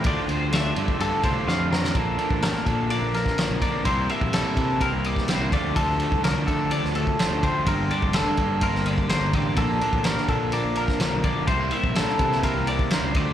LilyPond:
<<
  \new Staff \with { instrumentName = "Clean electric guitar" } { \time 4/4 \key bes \lydian \tempo 4 = 126 d''8 c''8 e''4 a'8 c''8 f''8 bes'8 | a'4 bes'8 a'8 d''8 bes'4 d''8 | c''8 e''8 a'4 bes'8 d''8 c''8 d''8 | a'4 bes'8 a'8 d''8 a'4 c''8 |
bes'8 d''8 a'4 bes'8 d''8 c''8 d''8 | a'4 bes'8 a'8 d''8 bes'4 d''8 | c''8 e''8 a'4 bes'8 d''8 c''8 d''8 | }
  \new Staff \with { instrumentName = "Clean electric guitar" } { \time 4/4 \key bes \lydian << { <d c' d' f'>8 c'8 d'8 c'4 d'8 c'8 d'8 | bes8 d'8 g16 r8. bes4. bes8 | <e bes c' e'>8 d'16 e'16 g16 bes8. c'4 g16 bes16 <d a c' f'>8 | f'8 a4 a16 c'8. a8 c'8 c'8 |
c'8 d'16 f'16 g16 bes8. c'4 bes8 c'8 | bes8 d'8 g16 r8. bes4. bes8 | a16 c'16 e'8 bes4 c'4 bes8 c'8 | } \\ { d,4. d4. a,4 | bes,4. d4 f,4. | c4. e4 c4 d,8~ | d,4 d4 a,4. d,8 |
g,4. d4 d4. | bes,4. d4 f,4. | c4. e4 c4 d,8 | } >> }
  \new Staff \with { instrumentName = "Overdriven electric guitar" } { \time 4/4 \key bes \lydian <d a d' f'>8 <a d' f'>8 <d a d' f'>8 <d a d' f'>8 <d a d' f'>8 <d a d' f'>8 <d a d' f'>8 <a d' f'>8 | <bes, d f bes d'>8 <f bes d'>8 <bes, d f bes d'>8 <f bes d'>4. <d f bes d'>8 <f bes d'>8 | <c g bes e'>8 <g bes e'>8 <c g bes e'>8 <g bes e'>4. <c g bes e'>8 <d f a d'>8 | <d f a d'>8 <f a d'>8 <d f a d'>8 <f a d'>4. <d f a d'>8 <f a d'>8 |
<g, d g bes d'>8 <g bes d'>8 <g, d g bes d'>8 <g bes d'>4. <d g bes d'>8 <g bes d'>8 | <bes, d f bes d'>8 <f bes d'>8 <bes, d f bes d'>8 <f bes d'>4. <d f bes d'>8 <f bes d'>8 | <c g bes e'>8 <g bes e'>8 <c g bes e'>8 <g bes e'>4. <c g bes e'>8 <d f a d'>8 | }
  \new Staff \with { instrumentName = "Fingered electric bass" } { \clef bass \time 4/4 \key bes \lydian d,16 r16 d,4 g,16 r16 g,16 r16 c,16 r16 f,4 | bes,,8 r16 a,,8 r16 bes,8. bes,,8 r8 b,,8 r16 | c,8 r16 bes,,8 r16 c8. c,8 r8 c,16 d,8~ | d,8. c,8 r16 d8. d,8 r8 d,8 r16 |
g,,8 r16 f,,8 r16 g,8. g,,8 r16 g,,8 a,,8 | bes,,8 r16 a,,8 r16 bes,8. bes,,8 r8 b,,8 r16 | c,8 r16 bes,,8 r16 c8. c,8 r8 cis,16 d,8 | }
  \new DrumStaff \with { instrumentName = "Drums" } \drummode { \time 4/4 <bd cymr>8 cymr8 <cymr sn>8 cymr16 bd16 cymr8 <bd cymr>8 sn8 sn16 sn16 | <bd cymr>8 cymr16 bd16 <cymr sn>16 sn16 <bd cymr>8 cymr8 <cymr sn>16 <bd sn>16 <cymr sn>8 <bd cymr>8 | <bd cymr>8 cymr16 bd16 <cymr sn>8 <bd cymr>8 <bd cymr>8 cymr16 <bd sn>16 <cymr sn>8 <bd cymr>8 | <bd cymr>8 cymr16 bd16 <cymr sn>8 <bd cymr>8 cymr16 sn16 cymr16 bd16 <cymr sn>8 <bd cymr>8 |
<bd cymr>8 cymr16 bd16 <cymr sn>8 <bd cymr>8 <bd cymr>16 sn16 cymr16 bd16 <cymr sn>8 <bd cymr>8 | <bd cymr>8 cymr16 bd16 <cymr sn>16 sn16 <bd cymr>8 cymr8 cymr16 <bd sn>16 <cymr sn>8 <bd cymr>8 | <bd cymr>8 cymr16 bd16 <cymr sn>16 sn16 <bd cymr>16 sn16 <bd cymr>8 cymr16 bd16 <cymr sn>8 <bd cymr>8 | }
>>